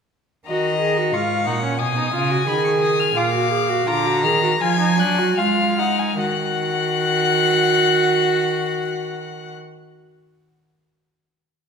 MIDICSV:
0, 0, Header, 1, 5, 480
1, 0, Start_track
1, 0, Key_signature, -6, "minor"
1, 0, Tempo, 665927
1, 340, Time_signature, 4, 2, 24, 8
1, 1782, Tempo, 710059
1, 3222, Tempo, 800000
1, 4182, Tempo, 837989
1, 7325, End_track
2, 0, Start_track
2, 0, Title_t, "Violin"
2, 0, Program_c, 0, 40
2, 338, Note_on_c, 0, 82, 73
2, 816, Note_on_c, 0, 85, 67
2, 827, Note_off_c, 0, 82, 0
2, 1292, Note_on_c, 0, 87, 73
2, 1303, Note_off_c, 0, 85, 0
2, 1782, Note_on_c, 0, 83, 69
2, 1793, Note_off_c, 0, 87, 0
2, 1894, Note_off_c, 0, 83, 0
2, 1898, Note_on_c, 0, 85, 66
2, 1944, Note_off_c, 0, 85, 0
2, 2017, Note_on_c, 0, 87, 73
2, 2135, Note_on_c, 0, 89, 73
2, 2145, Note_off_c, 0, 87, 0
2, 2252, Note_on_c, 0, 86, 78
2, 2262, Note_off_c, 0, 89, 0
2, 2728, Note_off_c, 0, 86, 0
2, 2732, Note_on_c, 0, 86, 75
2, 2970, Note_off_c, 0, 86, 0
2, 2973, Note_on_c, 0, 89, 64
2, 3219, Note_off_c, 0, 89, 0
2, 3224, Note_on_c, 0, 92, 74
2, 3456, Note_on_c, 0, 90, 71
2, 3465, Note_off_c, 0, 92, 0
2, 3685, Note_off_c, 0, 90, 0
2, 3688, Note_on_c, 0, 89, 69
2, 4173, Note_off_c, 0, 89, 0
2, 4184, Note_on_c, 0, 90, 76
2, 6087, Note_off_c, 0, 90, 0
2, 7325, End_track
3, 0, Start_track
3, 0, Title_t, "Violin"
3, 0, Program_c, 1, 40
3, 344, Note_on_c, 1, 75, 67
3, 817, Note_on_c, 1, 77, 64
3, 828, Note_off_c, 1, 75, 0
3, 1056, Note_on_c, 1, 78, 68
3, 1067, Note_off_c, 1, 77, 0
3, 1294, Note_off_c, 1, 78, 0
3, 1298, Note_on_c, 1, 80, 77
3, 2251, Note_on_c, 1, 77, 73
3, 2261, Note_off_c, 1, 80, 0
3, 2728, Note_on_c, 1, 82, 76
3, 2738, Note_off_c, 1, 77, 0
3, 3224, Note_on_c, 1, 80, 79
3, 3233, Note_off_c, 1, 82, 0
3, 3687, Note_on_c, 1, 77, 71
3, 3696, Note_off_c, 1, 80, 0
3, 3929, Note_off_c, 1, 77, 0
3, 3932, Note_on_c, 1, 78, 67
3, 4054, Note_on_c, 1, 80, 63
3, 4063, Note_off_c, 1, 78, 0
3, 4176, Note_off_c, 1, 80, 0
3, 4180, Note_on_c, 1, 78, 73
3, 6083, Note_off_c, 1, 78, 0
3, 7325, End_track
4, 0, Start_track
4, 0, Title_t, "Viola"
4, 0, Program_c, 2, 41
4, 341, Note_on_c, 2, 66, 61
4, 562, Note_off_c, 2, 66, 0
4, 578, Note_on_c, 2, 68, 62
4, 702, Note_on_c, 2, 66, 60
4, 713, Note_off_c, 2, 68, 0
4, 822, Note_on_c, 2, 65, 60
4, 833, Note_off_c, 2, 66, 0
4, 1053, Note_off_c, 2, 65, 0
4, 1058, Note_on_c, 2, 63, 62
4, 1174, Note_off_c, 2, 63, 0
4, 1178, Note_on_c, 2, 61, 58
4, 1295, Note_off_c, 2, 61, 0
4, 1301, Note_on_c, 2, 59, 63
4, 1417, Note_off_c, 2, 59, 0
4, 1424, Note_on_c, 2, 63, 65
4, 1537, Note_off_c, 2, 63, 0
4, 1541, Note_on_c, 2, 65, 62
4, 1662, Note_on_c, 2, 66, 68
4, 1673, Note_off_c, 2, 65, 0
4, 1781, Note_off_c, 2, 66, 0
4, 1785, Note_on_c, 2, 68, 71
4, 2240, Note_off_c, 2, 68, 0
4, 2254, Note_on_c, 2, 65, 70
4, 2367, Note_off_c, 2, 65, 0
4, 2371, Note_on_c, 2, 66, 60
4, 2486, Note_off_c, 2, 66, 0
4, 2489, Note_on_c, 2, 68, 65
4, 2608, Note_on_c, 2, 66, 68
4, 2618, Note_off_c, 2, 68, 0
4, 2728, Note_on_c, 2, 65, 69
4, 2738, Note_off_c, 2, 66, 0
4, 2854, Note_on_c, 2, 66, 68
4, 2864, Note_off_c, 2, 65, 0
4, 2978, Note_on_c, 2, 68, 73
4, 2989, Note_off_c, 2, 66, 0
4, 3100, Note_off_c, 2, 68, 0
4, 3103, Note_on_c, 2, 66, 61
4, 3152, Note_off_c, 2, 66, 0
4, 3226, Note_on_c, 2, 65, 65
4, 3336, Note_off_c, 2, 65, 0
4, 3341, Note_on_c, 2, 63, 61
4, 3452, Note_off_c, 2, 63, 0
4, 3456, Note_on_c, 2, 62, 69
4, 3574, Note_on_c, 2, 66, 67
4, 3583, Note_off_c, 2, 62, 0
4, 3693, Note_on_c, 2, 65, 65
4, 3702, Note_off_c, 2, 66, 0
4, 3935, Note_on_c, 2, 63, 68
4, 3944, Note_off_c, 2, 65, 0
4, 4183, Note_off_c, 2, 63, 0
4, 4186, Note_on_c, 2, 66, 70
4, 6089, Note_off_c, 2, 66, 0
4, 7325, End_track
5, 0, Start_track
5, 0, Title_t, "Cello"
5, 0, Program_c, 3, 42
5, 340, Note_on_c, 3, 51, 63
5, 817, Note_on_c, 3, 44, 66
5, 827, Note_off_c, 3, 51, 0
5, 1055, Note_on_c, 3, 46, 60
5, 1066, Note_off_c, 3, 44, 0
5, 1295, Note_on_c, 3, 47, 65
5, 1306, Note_off_c, 3, 46, 0
5, 1534, Note_off_c, 3, 47, 0
5, 1538, Note_on_c, 3, 49, 68
5, 1777, Note_off_c, 3, 49, 0
5, 1784, Note_on_c, 3, 51, 69
5, 2239, Note_off_c, 3, 51, 0
5, 2248, Note_on_c, 3, 46, 66
5, 2717, Note_off_c, 3, 46, 0
5, 2729, Note_on_c, 3, 50, 68
5, 2973, Note_on_c, 3, 51, 70
5, 2983, Note_off_c, 3, 50, 0
5, 3219, Note_off_c, 3, 51, 0
5, 3223, Note_on_c, 3, 53, 68
5, 3452, Note_on_c, 3, 54, 72
5, 3461, Note_off_c, 3, 53, 0
5, 3684, Note_off_c, 3, 54, 0
5, 3688, Note_on_c, 3, 56, 70
5, 4173, Note_off_c, 3, 56, 0
5, 4185, Note_on_c, 3, 51, 57
5, 6087, Note_off_c, 3, 51, 0
5, 7325, End_track
0, 0, End_of_file